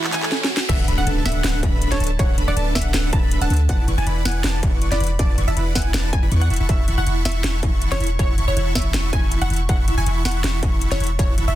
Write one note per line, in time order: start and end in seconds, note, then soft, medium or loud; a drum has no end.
0.00 0.28 E3 medium
0.00 0.27 A3 medium
0.00 0.27 C#4 medium
0.00 0.11 E4 medium
0.00 0.28 F#4 medium
0.00 0.11 E5 medium
0.00 0.11 F#5 medium
0.00 0.11 A5 medium
0.00 0.11 B5 medium
0.00 0.11 C#6 medium
0.00 clap loud
0.00 riser medium
0.13 0.32 E4 medium
0.13 0.18 E5 medium
0.13 0.32 E5 medium
0.13 0.32 F#5 medium
0.13 0.29 G#5 loud
0.13 0.32 A5 medium
0.13 0.32 B5 medium
0.13 0.32 C#6 medium
0.13 clap loud
0.13 closed hi-hat medium
0.23 0.27 A4 medium
0.23 clap loud
0.32 0.37 A4 loud
0.32 snare medium
0.42 0.44 C#5 medium
0.42 snare medium
0.50 0.56 F#4 medium
0.57 0.65 F#4 loud
0.57 snare loud
0.69 0.86 D1 loud
0.69 0.86 D4 medium
0.69 0.86 A4 medium
0.69 0.86 B4 medium
0.69 0.85 E5 loud
0.69 0.86 E5 medium
0.69 0.86 F#5 medium
0.69 kick loud
0.69 closed hi-hat medium
0.69 crash loud
0.69 impact medium
0.88 0.96 D1 medium
0.88 0.95 D4 medium
0.88 0.95 A4 medium
0.88 0.95 B4 medium
0.88 0.95 E5 medium
0.88 0.95 B5 loud
0.88 closed hi-hat medium
0.98 1.05 D1 loud
0.98 1.05 D4 loud
0.98 1.05 A4 medium
0.98 1.05 B4 medium
0.98 1.05 E5 medium
0.98 1.14 F#5 medium
0.98 1.05 F#5 loud
1.07 1.24 D1 medium
1.07 1.23 D4 medium
1.07 1.23 A4 medium
1.07 1.23 B4 medium
1.07 1.23 E5 medium
1.07 1.23 A5 medium
1.07 1.23 A5 loud
1.07 closed hi-hat medium
1.25 1.42 D1 loud
1.25 1.42 D4 loud
1.25 1.42 A4 medium
1.25 1.42 B4 loud
1.25 1.42 E5 medium
1.25 1.42 F#5 loud
1.25 snare medium
1.25 closed hi-hat medium
1.29 closed hi-hat medium
1.32 closed hi-hat medium
1.44 1.61 D1 loud
1.44 1.61 D4 medium
1.44 1.61 A4 medium
1.44 1.61 B4 medium
1.44 1.61 E5 medium
1.44 1.61 F#5 medium
1.44 snare loud
1.44 closed hi-hat medium
1.63 1.90 D1 loud
1.63 1.89 D4 medium
1.63 1.89 A4 medium
1.63 1.89 B4 medium
1.63 1.89 E5 medium
1.63 1.89 B5 medium
1.63 kick loud
1.63 closed hi-hat medium
1.82 closed hi-hat medium
1.92 1.99 D1 loud
1.92 1.99 D4 medium
1.92 1.99 A4 medium
1.92 1.99 B4 medium
1.92 2.07 C#5 medium
1.92 1.99 E5 medium
1.92 1.99 A5 medium
1.92 snare soft
1.92 closed hi-hat medium
2.00 2.17 D1 loud
2.00 2.10 D4 medium
2.00 2.10 A4 medium
2.00 2.10 B4 medium
2.00 2.10 E5 medium
2.00 2.10 A5 medium
2.00 closed hi-hat medium
2.04 closed hi-hat medium
2.07 closed hi-hat medium
2.19 2.36 D1 loud
2.19 2.36 D4 medium
2.19 2.36 A4 medium
2.19 2.36 B4 medium
2.19 2.35 C#5 medium
2.19 2.36 E5 medium
2.19 2.36 F#5 medium
2.19 kick loud
2.19 closed hi-hat medium
2.38 2.46 D1 medium
2.38 2.45 D4 medium
2.38 2.45 A4 medium
2.38 2.45 B4 medium
2.38 2.45 E5 medium
2.38 2.45 B5 loud
2.38 closed hi-hat medium
2.48 2.55 D1 loud
2.48 2.54 D4 loud
2.48 2.54 A4 medium
2.48 2.54 B4 medium
2.48 2.64 D5 medium
2.48 2.54 E5 medium
2.48 2.54 F#5 loud
2.57 2.74 D1 loud
2.57 2.73 D4 medium
2.57 2.73 A4 medium
2.57 2.73 B4 medium
2.57 2.73 E5 medium
2.57 2.73 A5 loud
2.57 closed hi-hat medium
2.75 2.92 D1 loud
2.75 2.92 D4 loud
2.75 2.92 A4 medium
2.75 2.92 B4 medium
2.75 2.86 E5 medium
2.75 2.92 E5 medium
2.75 2.92 F#5 loud
2.75 kick medium
2.75 snare medium
2.75 closed hi-hat soft
2.79 closed hi-hat medium
2.82 closed hi-hat medium
2.94 3.11 D1 loud
2.94 3.11 D4 medium
2.94 3.11 A4 medium
2.94 3.11 B4 medium
2.94 3.11 E5 medium
2.94 3.11 F#5 medium
2.94 snare loud
2.94 snare medium
2.94 closed hi-hat medium
3.13 3.40 D1 loud
3.13 3.39 D4 medium
3.13 3.39 A4 medium
3.13 3.39 B4 medium
3.13 3.39 E5 medium
3.13 3.29 A5 loud
3.13 3.39 B5 medium
3.13 kick loud
3.13 closed hi-hat medium
3.31 closed hi-hat medium
3.41 3.49 D1 loud
3.41 3.49 D4 medium
3.41 3.49 A4 medium
3.41 3.49 B4 medium
3.41 3.49 E5 medium
3.41 3.57 F#5 medium
3.41 3.49 A5 medium
3.41 3.49 A5 loud
3.41 closed hi-hat medium
3.50 3.71 D2 medium
3.50 3.60 D4 medium
3.50 3.60 A4 medium
3.50 3.60 B4 medium
3.50 3.60 E5 medium
3.50 3.60 A5 medium
3.50 closed hi-hat medium
3.54 closed hi-hat medium
3.56 closed hi-hat medium
3.69 3.86 E1 loud
3.69 3.86 E4 medium
3.69 3.86 B4 medium
3.69 3.86 D5 medium
3.69 3.85 F#5 loud
3.69 3.86 F#5 medium
3.69 3.86 A5 medium
3.69 kick loud
3.69 closed hi-hat medium
3.88 3.96 E1 medium
3.88 3.95 E4 medium
3.88 3.95 B4 medium
3.88 3.95 D5 medium
3.88 3.95 F#5 medium
3.88 3.95 C#6 loud
3.88 closed hi-hat medium
3.98 4.05 E1 medium
3.98 4.04 E4 medium
3.98 4.04 B4 medium
3.98 4.05 D5 medium
3.98 4.05 F#5 medium
3.98 4.14 G#5 medium
3.98 4.05 A5 loud
4.06 4.24 E1 loud
4.06 4.23 E4 medium
4.06 4.23 B4 medium
4.06 4.23 D5 medium
4.06 4.23 F#5 medium
4.06 4.23 B5 medium
4.06 4.23 B5 loud
4.06 closed hi-hat medium
4.25 4.42 E1 loud
4.25 4.42 E4 loud
4.25 4.42 B4 medium
4.25 4.42 D5 medium
4.25 4.42 F#5 medium
4.25 4.42 G#5 loud
4.25 snare medium
4.25 closed hi-hat soft
4.29 closed hi-hat medium
4.32 closed hi-hat medium
4.44 4.61 E1 medium
4.44 4.61 E4 medium
4.44 4.61 B4 medium
4.44 4.61 D5 medium
4.44 4.61 F#5 medium
4.44 4.61 A5 medium
4.44 snare loud
4.44 closed hi-hat medium
4.63 4.90 E1 loud
4.63 4.89 E4 medium
4.63 4.89 B4 medium
4.63 4.89 D5 medium
4.63 4.89 F#5 medium
4.63 4.89 C#6 medium
4.63 kick loud
4.63 closed hi-hat medium
4.82 closed hi-hat medium
4.91 4.99 E1 loud
4.91 4.99 E4 medium
4.91 4.99 B4 medium
4.91 4.99 D5 medium
4.91 5.07 D5 medium
4.91 4.99 F#5 medium
4.91 4.99 B5 loud
4.91 4.99 B5 medium
4.91 snare soft
4.91 closed hi-hat medium
5.00 5.17 E1 medium
5.00 5.10 E4 medium
5.00 5.10 B4 medium
5.00 5.10 D5 medium
5.00 5.10 F#5 medium
5.00 5.10 B5 medium
5.00 5.10 B5 loud
5.00 closed hi-hat soft
5.04 closed hi-hat medium
5.07 closed hi-hat medium
5.19 5.36 E1 loud
5.19 5.36 E4 medium
5.19 5.36 B4 medium
5.19 5.36 D5 medium
5.19 5.35 D5 loud
5.19 5.36 F#5 medium
5.19 5.36 A5 medium
5.19 kick loud
5.19 closed hi-hat medium
5.38 5.46 E1 loud
5.38 5.45 E4 medium
5.38 5.45 B4 medium
5.38 5.45 D5 medium
5.38 5.45 F#5 medium
5.38 5.45 C#6 loud
5.38 closed hi-hat medium
5.48 5.55 E1 loud
5.48 5.55 E4 loud
5.48 5.55 B4 medium
5.48 5.55 D5 medium
5.48 5.64 E5 loud
5.48 5.55 F#5 medium
5.48 5.54 A5 loud
5.48 5.55 A5 loud
5.57 5.74 E1 loud
5.57 5.73 E4 medium
5.57 5.73 B4 medium
5.57 5.73 D5 medium
5.57 5.73 F#5 medium
5.57 5.73 B5 loud
5.57 closed hi-hat medium
5.75 5.92 E1 loud
5.75 5.92 E4 loud
5.75 5.92 B4 medium
5.75 5.92 D5 loud
5.75 5.92 F#5 loud
5.75 5.86 F#5 medium
5.75 5.92 G#5 loud
5.75 kick medium
5.75 snare medium
5.75 closed hi-hat soft
5.79 closed hi-hat medium
5.82 closed hi-hat medium
5.94 6.21 E1 loud
5.94 6.11 E4 medium
5.94 6.11 B4 medium
5.94 6.11 D5 medium
5.94 6.11 F#5 medium
5.94 6.11 A5 medium
5.94 snare loud
5.94 snare medium
5.94 closed hi-hat medium
6.13 6.29 G#5 medium
6.13 kick loud
6.13 closed hi-hat medium
6.23 6.30 E1 loud
6.23 6.29 E4 loud
6.23 6.29 B4 medium
6.23 6.29 D5 medium
6.23 6.29 F#5 medium
6.23 6.29 B5 loud
6.23 6.30 B5 loud
6.32 6.49 E2 medium
6.32 6.48 E4 medium
6.32 6.48 B4 medium
6.32 6.48 D5 medium
6.32 6.48 F#5 medium
6.32 6.48 C#6 loud
6.32 6.48 C#6 medium
6.32 closed hi-hat medium
6.41 6.57 F#5 medium
6.41 closed hi-hat medium
6.50 6.58 E1 medium
6.50 6.58 E4 medium
6.50 6.58 E5 medium
6.50 6.58 F#5 medium
6.50 6.58 A5 medium
6.50 6.58 B5 medium
6.50 6.58 C#6 medium
6.50 closed hi-hat soft
6.54 closed hi-hat medium
6.56 6.67 E1 loud
6.56 6.67 E4 medium
6.56 6.67 E5 medium
6.56 6.67 F#5 medium
6.56 6.67 A5 medium
6.56 6.67 B5 medium
6.56 6.67 C#6 loud
6.56 closed hi-hat medium
6.69 6.86 E1 loud
6.69 6.86 E4 medium
6.69 6.85 E5 loud
6.69 6.86 E5 medium
6.69 6.86 F#5 medium
6.69 6.86 A5 medium
6.69 6.86 B5 medium
6.69 6.86 C#6 medium
6.69 kick loud
6.69 closed hi-hat medium
6.88 6.96 E1 loud
6.88 6.95 E4 medium
6.88 6.95 E5 medium
6.88 6.95 F#5 medium
6.88 6.95 A5 medium
6.88 6.95 B5 medium
6.88 6.95 C#6 loud
6.88 closed hi-hat medium
6.98 7.05 E1 loud
6.98 7.04 E4 loud
6.98 7.04 E5 medium
6.98 7.04 F#5 medium
6.98 7.14 F#5 medium
6.98 7.04 A5 medium
6.98 7.04 B5 medium
6.98 7.04 C#6 loud
7.07 7.24 E1 medium
7.07 7.23 E4 medium
7.07 7.23 E5 medium
7.07 7.23 F#5 medium
7.07 7.23 A5 medium
7.07 7.23 B5 medium
7.07 7.23 C#6 loud
7.07 closed hi-hat medium
7.25 7.42 E1 loud
7.25 7.42 E4 loud
7.25 7.42 E5 medium
7.25 7.42 F#5 medium
7.25 7.42 A5 loud
7.25 7.42 B5 medium
7.25 7.42 C#6 loud
7.25 snare medium
7.25 closed hi-hat soft
7.29 closed hi-hat medium
7.32 closed hi-hat medium
7.44 7.61 E1 loud
7.44 7.61 E4 medium
7.44 7.61 E5 medium
7.44 7.61 F#5 medium
7.44 7.61 A5 medium
7.44 7.61 B5 medium
7.44 7.61 C#6 medium
7.44 snare loud
7.44 closed hi-hat medium
7.63 7.90 E1 loud
7.63 7.89 E4 medium
7.63 7.89 E5 medium
7.63 7.89 F#5 medium
7.63 7.89 A5 medium
7.63 7.89 B5 medium
7.63 7.89 C#6 medium
7.63 kick loud
7.63 closed hi-hat medium
7.82 closed hi-hat medium
7.91 7.99 E1 medium
7.91 7.99 E4 medium
7.91 8.07 C#5 medium
7.91 7.99 E5 medium
7.91 7.99 F#5 medium
7.91 7.99 A5 medium
7.91 7.99 B5 medium
7.91 7.99 C#6 medium
7.91 snare soft
7.91 closed hi-hat medium
8.00 8.17 E1 medium
8.00 8.10 E4 medium
8.00 8.10 E5 medium
8.00 8.10 F#5 medium
8.00 8.10 A5 medium
8.00 8.10 B5 medium
8.00 8.10 C#6 medium
8.00 closed hi-hat soft
8.04 closed hi-hat medium
8.07 closed hi-hat medium
8.19 8.36 E1 loud
8.19 8.36 E4 medium
8.19 8.35 C#5 medium
8.19 8.36 E5 medium
8.19 8.36 F#5 medium
8.19 8.36 A5 medium
8.19 8.36 B5 medium
8.19 8.36 C#6 medium
8.19 kick loud
8.19 closed hi-hat medium
8.38 8.46 E1 loud
8.38 8.45 E4 medium
8.38 8.45 E5 medium
8.38 8.45 F#5 medium
8.38 8.45 A5 medium
8.38 8.45 B5 medium
8.38 8.45 C#6 loud
8.38 closed hi-hat medium
8.48 8.55 E1 loud
8.48 8.54 E4 medium
8.48 8.64 C#5 loud
8.48 8.54 E5 medium
8.48 8.54 F#5 medium
8.48 8.54 A5 medium
8.48 8.54 B5 medium
8.48 8.54 C#6 loud
8.48 8.55 C#6 loud
8.56 8.74 E1 loud
8.56 8.73 E4 medium
8.56 8.73 E5 medium
8.56 8.73 F#5 medium
8.56 8.73 A5 medium
8.56 8.73 B5 medium
8.56 8.73 C#6 medium
8.56 8.73 C#6 loud
8.56 closed hi-hat medium
8.75 8.92 E1 loud
8.75 8.92 E4 loud
8.75 8.92 E5 loud
8.75 8.87 E5 medium
8.75 8.92 F#5 medium
8.75 8.92 A5 medium
8.75 8.92 B5 medium
8.75 8.92 C#6 loud
8.75 kick medium
8.75 snare medium
8.75 closed hi-hat soft
8.79 closed hi-hat medium
8.82 closed hi-hat medium
8.94 9.11 E1 loud
8.94 9.11 E4 medium
8.94 9.11 E5 medium
8.94 9.11 F#5 medium
8.94 9.11 A5 medium
8.94 9.11 B5 medium
8.94 9.11 C#6 medium
8.94 snare loud
8.94 snare medium
8.94 closed hi-hat medium
9.13 9.40 E1 loud
9.13 9.39 E4 medium
9.13 9.39 E5 medium
9.13 9.39 F#5 medium
9.13 9.29 G#5 loud
9.13 9.39 A5 medium
9.13 9.39 B5 medium
9.13 9.39 C#6 medium
9.13 kick loud
9.13 closed hi-hat medium
9.32 closed hi-hat medium
9.41 9.49 E1 loud
9.41 9.49 E4 medium
9.41 9.49 E5 medium
9.41 9.49 F#5 medium
9.41 9.57 F#5 medium
9.41 9.49 A5 medium
9.41 9.49 B5 medium
9.41 9.49 C#6 medium
9.41 closed hi-hat medium
9.50 9.67 E1 loud
9.50 9.60 E4 medium
9.50 9.60 E5 medium
9.50 9.60 F#5 medium
9.50 9.60 A5 medium
9.50 9.60 B5 medium
9.50 9.60 C#6 medium
9.50 closed hi-hat medium
9.54 closed hi-hat medium
9.56 closed hi-hat medium
9.69 9.86 E1 loud
9.69 9.86 E4 medium
9.69 9.86 E5 medium
9.69 9.86 F#5 medium
9.69 9.85 F#5 loud
9.69 9.86 A5 medium
9.69 9.86 B5 medium
9.69 9.86 C#6 medium
9.69 kick loud
9.69 closed hi-hat medium
9.88 9.96 E1 loud
9.88 9.95 E4 medium
9.88 9.95 E5 medium
9.88 9.95 F#5 medium
9.88 9.95 A5 medium
9.88 9.95 B5 medium
9.88 9.95 C#6 loud
9.88 closed hi-hat medium
9.98 10.05 E1 loud
9.98 10.04 E4 loud
9.98 10.04 E5 medium
9.98 10.04 F#5 medium
9.98 10.14 G#5 loud
9.98 10.04 A5 medium
9.98 10.04 B5 medium
9.98 10.04 C#6 loud
10.06 10.24 E1 loud
10.06 10.23 E4 medium
10.06 10.23 E5 medium
10.06 10.23 F#5 medium
10.06 10.23 A5 medium
10.06 10.23 B5 medium
10.06 10.23 C#6 loud
10.06 closed hi-hat medium
10.25 10.42 E1 loud
10.25 10.42 E4 loud
10.25 10.42 E5 loud
10.25 10.42 F#5 loud
10.25 10.41 F#5 medium
10.25 10.42 A5 medium
10.25 10.42 B5 loud
10.25 10.42 C#6 loud
10.25 snare medium
10.25 closed hi-hat medium
10.28 closed hi-hat medium
10.31 closed hi-hat medium
10.44 10.61 E1 loud
10.44 10.61 E4 medium
10.44 10.61 E5 medium
10.44 10.61 F#5 medium
10.44 10.61 A5 medium
10.44 10.61 B5 medium
10.44 10.61 C#6 medium
10.44 snare loud
10.44 closed hi-hat medium
10.63 10.90 E1 loud
10.63 10.89 E4 medium
10.63 10.89 E5 medium
10.63 10.89 F#5 medium
10.63 10.89 A5 medium
10.63 10.89 B5 medium
10.63 10.89 C#6 medium
10.63 kick loud
10.63 closed hi-hat medium
10.82 closed hi-hat medium
10.91 10.99 E1 loud
10.91 10.99 E4 medium
10.91 11.07 C#5 medium
10.91 10.99 E5 medium
10.91 10.99 F#5 medium
10.91 10.99 A5 medium
10.91 10.99 B5 medium
10.91 10.99 C#6 loud
10.91 10.99 C#6 medium
10.91 snare soft
10.91 closed hi-hat medium
11.00 11.17 E1 medium
11.00 11.10 E4 medium
11.00 11.10 E5 medium
11.00 11.10 F#5 medium
11.00 11.10 A5 medium
11.00 11.10 B5 medium
11.00 11.10 C#6 medium
11.00 closed hi-hat medium
11.04 closed hi-hat medium
11.07 closed hi-hat medium
11.19 11.36 E1 loud
11.19 11.36 E4 medium
11.19 11.35 C#5 medium
11.19 11.36 E5 medium
11.19 11.36 F#5 medium
11.19 11.36 A5 medium
11.19 11.36 B5 medium
11.19 11.36 C#6 medium
11.19 kick loud
11.19 closed hi-hat medium
11.38 11.46 E1 medium
11.38 11.45 E4 medium
11.38 11.45 E5 medium
11.38 11.45 F#5 medium
11.38 11.45 A5 medium
11.38 11.45 B5 medium
11.38 11.45 C#6 loud
11.38 closed hi-hat medium
11.48 11.55 E1 loud
11.48 11.54 E4 loud
11.48 11.54 E5 medium
11.48 11.55 E5 loud
11.48 11.54 F#5 medium
11.48 11.54 A5 medium
11.48 11.54 B5 medium
11.48 11.54 C#6 loud